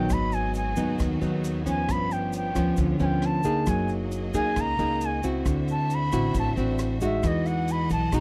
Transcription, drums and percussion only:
0.10 kick, cross-stick, closed hi-hat, shaker
0.32 closed hi-hat, shaker
0.54 closed hi-hat, shaker
0.76 kick, closed hi-hat, shaker
0.99 kick, cross-stick, closed hi-hat, shaker
1.21 closed hi-hat, shaker
1.44 closed hi-hat, shaker
1.66 kick, closed hi-hat, shaker
1.89 kick, cross-stick, closed hi-hat, shaker
2.11 closed hi-hat, shaker
2.33 closed hi-hat, shaker
2.56 kick, cross-stick, closed hi-hat, shaker
2.77 kick, closed hi-hat, shaker
2.99 closed hi-hat, shaker
3.22 cross-stick, closed hi-hat
3.43 kick, closed hi-hat, shaker
3.66 kick, cross-stick, closed hi-hat, shaker
3.88 closed hi-hat, shaker
4.11 closed hi-hat, shaker
4.34 kick, closed hi-hat, shaker
4.56 kick, cross-stick, closed hi-hat, shaker
4.79 closed hi-hat, shaker
5.01 closed hi-hat, shaker
5.23 kick, closed hi-hat, shaker
5.46 kick, cross-stick, closed hi-hat, shaker
5.68 closed hi-hat, shaker
5.90 closed hi-hat, shaker
6.12 kick, cross-stick, closed hi-hat, shaker
6.34 kick, closed hi-hat, shaker
6.57 closed hi-hat, shaker
6.78 cross-stick, closed hi-hat, shaker
7.01 kick, closed hi-hat, shaker
7.23 kick, cross-stick, closed hi-hat, shaker
7.46 closed hi-hat, shaker
7.68 closed hi-hat, shaker
7.90 kick, closed hi-hat, shaker
8.12 kick, cross-stick, closed hi-hat, shaker

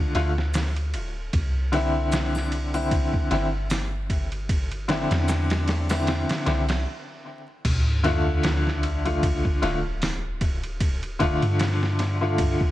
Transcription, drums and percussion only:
0.15 snare, ride
0.38 snare
0.54 snare, ride, maracas
0.76 ride
0.94 ride
1.33 kick, ride
1.73 snare, ride
2.12 snare, ride, maracas
2.35 snare, triangle
2.52 ride
2.74 ride, triangle
2.91 kick, ride
3.14 kick
3.31 snare, ride
3.70 snare, open hi-hat, maracas
4.10 kick, ride
4.32 ride
4.49 kick, ride
4.71 ride
4.89 snare, ride
5.11 snare, ride
5.28 snare, ride, maracas
5.50 snare, ride
5.68 snare, ride
5.89 snare, ride, triangle
6.07 snare, ride
6.29 snare, ride
6.46 snare, ride
6.69 snare, ride
7.65 kick, crash, ride
8.04 snare, ride
8.43 snare, ride
8.67 snare
8.83 ride
9.06 ride
9.23 kick, ride
9.45 kick
9.63 snare, ride
10.02 snare, open hi-hat
10.41 kick, ride
10.63 ride
10.80 kick, ride
11.03 ride
11.20 kick, ride
11.42 ride
11.59 snare, ride
11.83 snare
11.99 snare, ride
12.38 kick, ride
12.61 kick

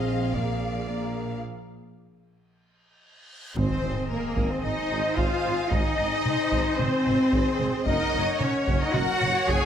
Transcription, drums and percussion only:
0.34 taiko
3.56 taiko
4.37 taiko
5.18 taiko
5.71 taiko
6.26 taiko mid
6.52 taiko
6.79 taiko mid
7.06 taiko mid
7.33 taiko
7.60 taiko mid
7.86 taiko
8.41 taiko mid
8.67 taiko
8.94 taiko mid
9.22 taiko mid
9.49 taiko

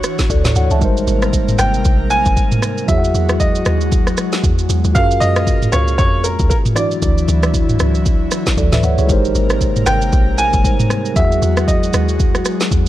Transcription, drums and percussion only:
0.03 cross-stick, shaker
0.18 kick, snare, shaker
0.30 kick, shaker
0.45 snare, mid tom, shaker
0.56 shaker
0.71 shaker
0.81 kick, shaker
0.97 shaker
1.07 shaker
1.22 cross-stick, shaker
1.33 kick, shaker
1.48 mid tom, shaker
1.58 cross-stick, shaker
1.74 shaker
1.85 kick, shaker
2.10 shaker
2.25 kick, shaker
2.37 kick, shaker
2.52 mid tom, shaker
2.62 cross-stick, shaker
2.78 shaker
2.88 kick, shaker
3.04 shaker
3.15 shaker
3.29 cross-stick, shaker
3.40 kick, shaker
3.55 shaker
3.65 cross-stick, shaker
3.81 shaker
3.92 kick, shaker
4.07 cross-stick, shaker
4.17 cross-stick, shaker
4.32 snare, shaker
4.44 kick, shaker
4.59 shaker
4.69 shaker
4.84 shaker
4.95 kick, shaker
5.11 shaker
5.21 shaker
5.36 cross-stick, shaker
5.47 kick, shaker
5.62 mid tom, shaker
5.72 cross-stick, shaker
5.88 shaker
5.99 kick, shaker
6.24 shaker
6.39 kick, shaker
6.50 kick, shaker
6.65 mid tom, shaker
6.76 cross-stick, shaker
6.91 shaker
7.02 kick, shaker
7.18 shaker
7.28 shaker
7.43 cross-stick, shaker
7.54 kick, shaker
7.69 mid tom, shaker
7.79 cross-stick, shaker
7.95 shaker
8.06 kick, shaker
8.31 cross-stick, shaker
8.46 kick, snare, shaker
8.57 kick, shaker
8.72 snare, mid tom, shaker
8.83 shaker
8.98 shaker
9.09 kick, shaker
9.25 shaker
9.35 shaker
9.50 cross-stick, shaker
9.61 kick, shaker
9.76 mid tom, shaker
9.86 cross-stick, shaker
10.02 shaker
10.12 kick, shaker
10.38 shaker
10.53 kick, shaker
10.64 kick, shaker
10.80 mid tom, shaker
10.90 cross-stick, shaker
11.05 shaker
11.16 kick, shaker
11.32 shaker
11.42 shaker
11.57 cross-stick, shaker
11.68 kick, shaker
11.83 shaker
11.93 cross-stick, shaker
12.09 shaker
12.20 kick, shaker
12.35 cross-stick, shaker
12.45 cross-stick, shaker
12.60 snare, shaker
12.71 kick, shaker

